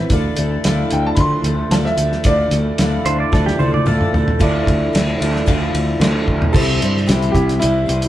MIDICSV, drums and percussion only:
0, 0, Header, 1, 2, 480
1, 0, Start_track
1, 0, Tempo, 535714
1, 101, Time_signature, 4, 2, 24, 8
1, 7241, End_track
2, 0, Start_track
2, 0, Title_t, "Drums"
2, 89, Note_on_c, 9, 42, 98
2, 91, Note_on_c, 9, 36, 110
2, 178, Note_off_c, 9, 42, 0
2, 180, Note_off_c, 9, 36, 0
2, 327, Note_on_c, 9, 42, 78
2, 417, Note_off_c, 9, 42, 0
2, 574, Note_on_c, 9, 42, 102
2, 582, Note_on_c, 9, 38, 123
2, 664, Note_off_c, 9, 42, 0
2, 672, Note_off_c, 9, 38, 0
2, 811, Note_on_c, 9, 42, 74
2, 901, Note_off_c, 9, 42, 0
2, 1045, Note_on_c, 9, 42, 82
2, 1052, Note_on_c, 9, 36, 99
2, 1134, Note_off_c, 9, 42, 0
2, 1141, Note_off_c, 9, 36, 0
2, 1293, Note_on_c, 9, 42, 74
2, 1382, Note_off_c, 9, 42, 0
2, 1535, Note_on_c, 9, 42, 99
2, 1543, Note_on_c, 9, 38, 110
2, 1625, Note_off_c, 9, 42, 0
2, 1633, Note_off_c, 9, 38, 0
2, 1665, Note_on_c, 9, 38, 31
2, 1755, Note_off_c, 9, 38, 0
2, 1770, Note_on_c, 9, 42, 69
2, 1860, Note_off_c, 9, 42, 0
2, 1901, Note_on_c, 9, 38, 31
2, 1990, Note_off_c, 9, 38, 0
2, 2006, Note_on_c, 9, 42, 91
2, 2016, Note_on_c, 9, 36, 116
2, 2095, Note_off_c, 9, 42, 0
2, 2106, Note_off_c, 9, 36, 0
2, 2252, Note_on_c, 9, 42, 73
2, 2341, Note_off_c, 9, 42, 0
2, 2493, Note_on_c, 9, 42, 86
2, 2502, Note_on_c, 9, 38, 115
2, 2583, Note_off_c, 9, 42, 0
2, 2591, Note_off_c, 9, 38, 0
2, 2738, Note_on_c, 9, 42, 66
2, 2828, Note_off_c, 9, 42, 0
2, 2982, Note_on_c, 9, 36, 112
2, 2989, Note_on_c, 9, 38, 59
2, 3072, Note_off_c, 9, 36, 0
2, 3079, Note_off_c, 9, 38, 0
2, 3114, Note_on_c, 9, 38, 51
2, 3204, Note_off_c, 9, 38, 0
2, 3227, Note_on_c, 9, 48, 78
2, 3317, Note_off_c, 9, 48, 0
2, 3350, Note_on_c, 9, 48, 64
2, 3440, Note_off_c, 9, 48, 0
2, 3465, Note_on_c, 9, 47, 89
2, 3555, Note_off_c, 9, 47, 0
2, 3591, Note_on_c, 9, 45, 67
2, 3681, Note_off_c, 9, 45, 0
2, 3712, Note_on_c, 9, 43, 93
2, 3802, Note_off_c, 9, 43, 0
2, 3833, Note_on_c, 9, 43, 95
2, 3922, Note_off_c, 9, 43, 0
2, 3948, Note_on_c, 9, 36, 109
2, 3949, Note_on_c, 9, 51, 99
2, 4037, Note_off_c, 9, 36, 0
2, 4039, Note_off_c, 9, 51, 0
2, 4187, Note_on_c, 9, 36, 86
2, 4195, Note_on_c, 9, 51, 75
2, 4277, Note_off_c, 9, 36, 0
2, 4285, Note_off_c, 9, 51, 0
2, 4434, Note_on_c, 9, 51, 105
2, 4442, Note_on_c, 9, 38, 114
2, 4523, Note_off_c, 9, 51, 0
2, 4532, Note_off_c, 9, 38, 0
2, 4677, Note_on_c, 9, 51, 78
2, 4766, Note_off_c, 9, 51, 0
2, 4801, Note_on_c, 9, 38, 33
2, 4891, Note_off_c, 9, 38, 0
2, 4906, Note_on_c, 9, 36, 105
2, 4910, Note_on_c, 9, 51, 107
2, 4996, Note_off_c, 9, 36, 0
2, 5000, Note_off_c, 9, 51, 0
2, 5149, Note_on_c, 9, 51, 76
2, 5238, Note_off_c, 9, 51, 0
2, 5388, Note_on_c, 9, 51, 105
2, 5396, Note_on_c, 9, 38, 124
2, 5477, Note_off_c, 9, 51, 0
2, 5485, Note_off_c, 9, 38, 0
2, 5625, Note_on_c, 9, 36, 69
2, 5715, Note_off_c, 9, 36, 0
2, 5751, Note_on_c, 9, 43, 99
2, 5841, Note_off_c, 9, 43, 0
2, 5865, Note_on_c, 9, 36, 114
2, 5874, Note_on_c, 9, 49, 117
2, 5954, Note_off_c, 9, 36, 0
2, 5964, Note_off_c, 9, 49, 0
2, 6112, Note_on_c, 9, 42, 71
2, 6201, Note_off_c, 9, 42, 0
2, 6245, Note_on_c, 9, 38, 34
2, 6335, Note_off_c, 9, 38, 0
2, 6351, Note_on_c, 9, 42, 102
2, 6359, Note_on_c, 9, 38, 114
2, 6440, Note_off_c, 9, 42, 0
2, 6448, Note_off_c, 9, 38, 0
2, 6473, Note_on_c, 9, 42, 45
2, 6563, Note_off_c, 9, 42, 0
2, 6582, Note_on_c, 9, 36, 86
2, 6587, Note_on_c, 9, 42, 67
2, 6672, Note_off_c, 9, 36, 0
2, 6677, Note_off_c, 9, 42, 0
2, 6713, Note_on_c, 9, 42, 44
2, 6722, Note_on_c, 9, 38, 32
2, 6803, Note_off_c, 9, 42, 0
2, 6811, Note_off_c, 9, 38, 0
2, 6827, Note_on_c, 9, 42, 92
2, 6917, Note_off_c, 9, 42, 0
2, 7070, Note_on_c, 9, 42, 75
2, 7160, Note_off_c, 9, 42, 0
2, 7187, Note_on_c, 9, 42, 50
2, 7241, Note_off_c, 9, 42, 0
2, 7241, End_track
0, 0, End_of_file